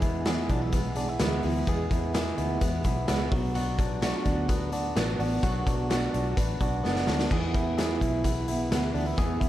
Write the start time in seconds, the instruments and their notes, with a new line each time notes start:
Already playing: steel-string acoustic guitar E2 B2 E3 G#3 B3 G#4, fingered electric bass E2, clean electric guitar B3
0.02 clean electric guitar E4, kick, closed hi-hat
0.25 steel-string acoustic guitar E2 B2 E3 G#3 B3 G#4, snare, closed hi-hat
0.49 fingered electric bass B1, clean electric guitar D4, kick, closed hi-hat
0.62 clean electric guitar E4
0.72 steel-string acoustic guitar E3 G#3 B3 G#4, kick, closed hi-hat
0.96 steel-string acoustic guitar E3 G#3 B3 G#4, clean electric guitar D4, closed hi-hat
1.08 clean electric guitar E4
1.19 fingered electric bass D2, steel-string acoustic guitar E2 B2 E3 G#3 B3 G#4, snare, closed hi-hat
1.43 fingered electric bass D2, steel-string acoustic guitar E3 G#3 B3 G#4, clean electric guitar E4, open hi-hat
1.67 steel-string acoustic guitar E2 B2 E3 G#3 B3 G#4, fingered electric bass E2, kick, closed hi-hat
1.91 fingered electric bass E2, clean electric guitar E4, kick, closed hi-hat
2.13 steel-string acoustic guitar E2 B2 E3 G#3 B3 G#4, snare, closed hi-hat
2.38 fingered electric bass D2, clean electric guitar E4, closed hi-hat
2.61 fingered electric bass E2, steel-string acoustic guitar E3 G#3 B3 G#4, kick, closed hi-hat
2.84 fingered electric bass B1, steel-string acoustic guitar E3 G#3 B3 G#4, clean electric guitar E4, kick, closed hi-hat
3.07 fingered electric bass C#2, steel-string acoustic guitar E2 B2 E3 G#3 B3 G#4, snare, closed hi-hat
3.31 fingered electric bass B1, clean electric guitar F#3, steel-string acoustic guitar B3 D4 F#4, kick, open hi-hat
3.54 steel-string acoustic guitar B2 F#3 B3 D4 F#4, closed hi-hat
3.78 clean electric guitar D4, kick, closed hi-hat
4.01 steel-string acoustic guitar B2 F#3 B3 D4 F#4, snare, closed hi-hat
4.25 fingered electric bass D2, clean electric guitar D4, kick, closed hi-hat
4.48 steel-string acoustic guitar F#3 B3 D4 F#4, kick, closed hi-hat
4.72 steel-string acoustic guitar B3 D4 F#4, closed hi-hat
4.96 fingered electric bass A1, steel-string acoustic guitar B2 F#3 B3 D4 F#4, snare, closed hi-hat
5.19 fingered electric bass A1, steel-string acoustic guitar B3 D4 F#4, open hi-hat
5.43 fingered electric bass B1, steel-string acoustic guitar B2 F#3 B3 D4 F#4, kick, closed hi-hat
5.66 fingered electric bass B1, clean electric guitar D4, kick, closed hi-hat
5.90 steel-string acoustic guitar B2 F#3 B3 D4 F#4, snare, closed hi-hat
6.14 fingered electric bass B1, clean electric guitar D4, closed hi-hat
6.37 fingered electric bass A1, steel-string acoustic guitar F#3 B3 D4 F#4, kick, closed hi-hat
6.61 fingered electric bass B1, steel-string acoustic guitar B3 D4 F#4, kick, closed hi-hat
6.84 fingered electric bass F#1, steel-string acoustic guitar B2 F#3 B3 D4 F#4, snare
6.96 snare
7.07 fingered electric bass D2, steel-string acoustic guitar B3 D4 F#4, snare
7.19 snare
7.31 fingered electric bass E2, steel-string acoustic guitar E2 B2 E3 B3 E4 G#4, kick, crash
7.54 clean electric guitar E4, kick, closed hi-hat
7.78 steel-string acoustic guitar E2 B2 E3 B3 E4 G#4, snare, closed hi-hat
8.01 fingered electric bass B1, clean electric guitar E4, kick, closed hi-hat
8.24 steel-string acoustic guitar E3 B3 E4 G#4, kick, closed hi-hat
8.48 steel-string acoustic guitar E3 B3 E4 G#4, closed hi-hat
8.71 fingered electric bass D2, steel-string acoustic guitar E2 B2 E3 B3 E4 G#4, snare, closed hi-hat
8.94 fingered electric bass D2, steel-string acoustic guitar B3 E4 G#4, clean electric guitar D4, open hi-hat
8.98 steel-string acoustic guitar E3
9.06 clean electric guitar E4
9.18 fingered electric bass E2, steel-string acoustic guitar E2 B2 E3 B3 E4 G#4, kick, closed hi-hat
9.40 fingered electric bass E2, clean electric guitar E4, kick, closed hi-hat